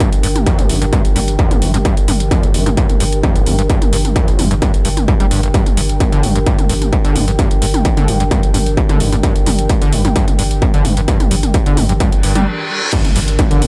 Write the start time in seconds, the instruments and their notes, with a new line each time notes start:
Already playing: ambient pad D4 G4 A#4 G5
0.00 acid bass G2, kick, closed hi-hat, mid tom
0.13 sub bass G1, closed hi-hat
0.23 sub bass G1, acid bass G2, open hi-hat
0.36 sub bass G1, closed hi-hat, mid tom
0.46 acid bass F2, kick, closed hi-hat
0.59 acid bass G1, sub bass G1, closed hi-hat, mid tom
0.69 sub bass G1, acid bass G2, open hi-hat
0.82 sub bass G1, acid bass G2, closed hi-hat
0.93 acid bass G2, kick, closed hi-hat, mid tom
1.05 sub bass G1, closed hi-hat
1.16 sub bass G1, acid bass G2, open hi-hat, mid tom
1.28 sub bass G1, closed hi-hat
1.39 acid bass F2, kick, closed hi-hat
1.51 acid bass G1, sub bass G1, closed hi-hat, mid tom
1.62 sub bass G1, acid bass G2, open hi-hat
1.74 sub bass G1, acid bass G2, closed hi-hat, mid tom
1.85 acid bass G2, kick, closed hi-hat
1.97 sub bass G1, closed hi-hat
2.08 sub bass G1, acid bass G2, open hi-hat, mid tom
2.20 sub bass G1, closed hi-hat
2.31 acid bass F2, kick, closed hi-hat, mid tom
2.43 acid bass G1, sub bass G1, closed hi-hat
2.54 sub bass G1, acid bass G2, open hi-hat
2.66 sub bass G1, acid bass G2, closed hi-hat, mid tom
2.77 acid bass G2, kick, closed hi-hat
2.89 sub bass G1, closed hi-hat, mid tom
3.00 sub bass G1, acid bass G2, open hi-hat
3.13 sub bass G1, closed hi-hat
3.23 acid bass F2, kick, closed hi-hat, mid tom
3.36 acid bass G1, sub bass G1, closed hi-hat
3.46 sub bass G1, acid bass G2, open hi-hat, mid tom
3.59 sub bass G1, acid bass G2, closed hi-hat
3.69 acid bass G2, kick, closed hi-hat
3.82 sub bass G1, closed hi-hat, mid tom
3.93 sub bass G1, acid bass G2, open hi-hat
4.05 sub bass G1, closed hi-hat, mid tom
4.16 acid bass F2, kick, closed hi-hat
4.28 acid bass G1, sub bass G1, closed hi-hat
4.39 sub bass G1, acid bass G2, open hi-hat, mid tom
4.51 sub bass G1, acid bass G2, closed hi-hat
4.62 acid bass G2, kick, closed hi-hat, mid tom
4.74 sub bass G1, closed hi-hat
4.85 sub bass G1, acid bass G2, open hi-hat
4.97 sub bass G1, closed hi-hat, mid tom
5.08 acid bass G2, kick, closed hi-hat
5.20 sub bass G1, acid bass G3, closed hi-hat, mid tom
5.31 sub bass G1, acid bass G2, open hi-hat
5.43 acid bass G1, sub bass G1, closed hi-hat
5.54 acid bass G2, kick, closed hi-hat
5.66 sub bass G1, closed hi-hat, mid tom
5.77 sub bass G1, acid bass G2, open hi-hat
5.89 sub bass G1, closed hi-hat
6.00 acid bass F2, kick, closed hi-hat, mid tom
6.12 sub bass G1, acid bass D3, closed hi-hat
6.23 sub bass G1, acid bass G2, open hi-hat, mid tom
6.36 sub bass G1, acid bass G2, closed hi-hat
6.46 acid bass G2, kick, closed hi-hat
6.59 sub bass G1, closed hi-hat, mid tom
6.69 sub bass G1, acid bass G2, open hi-hat
6.82 sub bass G1, closed hi-hat, mid tom
6.93 acid bass F2, kick, closed hi-hat
7.05 sub bass G1, acid bass D3, closed hi-hat
7.16 sub bass G1, acid bass G2, open hi-hat, mid tom
7.28 sub bass G1, acid bass G2, closed hi-hat
7.39 acid bass G2, kick, closed hi-hat, mid tom
7.51 sub bass G1, closed hi-hat
7.62 sub bass G1, acid bass G2, open hi-hat
7.74 sub bass G1, closed hi-hat, mid tom
7.85 acid bass F2, kick, closed hi-hat
7.97 sub bass G1, acid bass D3, closed hi-hat, mid tom
8.08 sub bass G1, acid bass G2, open hi-hat
8.20 sub bass G1, acid bass G2, closed hi-hat
8.31 acid bass G2, kick, closed hi-hat, mid tom
8.43 sub bass G1, closed hi-hat
8.54 sub bass G1, acid bass G2, open hi-hat, mid tom
8.66 sub bass G1, closed hi-hat
8.77 acid bass F2, kick, closed hi-hat
8.89 sub bass G1, acid bass D3, closed hi-hat, mid tom
9.00 sub bass G1, acid bass G2, open hi-hat
9.12 sub bass G1, acid bass G2, closed hi-hat, mid tom
9.23 acid bass G2, kick, closed hi-hat
9.36 sub bass G1, closed hi-hat
9.46 sub bass G1, acid bass G2, open hi-hat, mid tom
9.59 sub bass G1, closed hi-hat
9.69 acid bass F2, kick, closed hi-hat, mid tom
9.82 sub bass G1, acid bass D3, closed hi-hat
9.93 sub bass G1, acid bass G2, open hi-hat
10.05 sub bass G1, acid bass G2, closed hi-hat, mid tom
10.16 acid bass G2, kick, closed hi-hat
10.28 sub bass G1, closed hi-hat, mid tom
10.39 sub bass G1, acid bass G2, open hi-hat
10.51 sub bass G1, closed hi-hat
10.62 acid bass F2, kick, closed hi-hat, mid tom
10.74 sub bass G1, acid bass D3, closed hi-hat
10.85 sub bass G1, acid bass G2, open hi-hat, mid tom
10.97 sub bass G1, acid bass G2, closed hi-hat
11.08 acid bass G2, kick, closed hi-hat
11.20 sub bass G1, closed hi-hat, mid tom
11.31 sub bass G1, acid bass G2, open hi-hat
11.43 sub bass G1, closed hi-hat, mid tom
11.54 acid bass F2, kick, closed hi-hat
11.66 sub bass G1, acid bass D3, closed hi-hat
11.77 sub bass G1, acid bass G2, open hi-hat, mid tom
11.89 sub bass G1, acid bass G2, closed hi-hat
12.00 acid bass G2, kick, closed hi-hat, mid tom, reverse cymbal
12.12 sub bass G1, closed hi-hat
12.23 sub bass G1, acid bass G2, open hi-hat
12.35 sub bass G1, acid bass G3, closed hi-hat, mid tom
12.92 acid bass G2, ambient pad D4, kick, closed hi-hat, crash, impact
13.01 ambient pad A#4
13.05 sub bass G1, closed hi-hat, mid tom
13.09 ambient pad G4
13.16 sub bass G1, acid bass G2, open hi-hat
13.28 sub bass G1, closed hi-hat
13.39 acid bass F2, ambient pad G5, kick, closed hi-hat, mid tom
13.51 sub bass G1, acid bass D3, closed hi-hat
13.62 sub bass G1, acid bass G2, open hi-hat, mid tom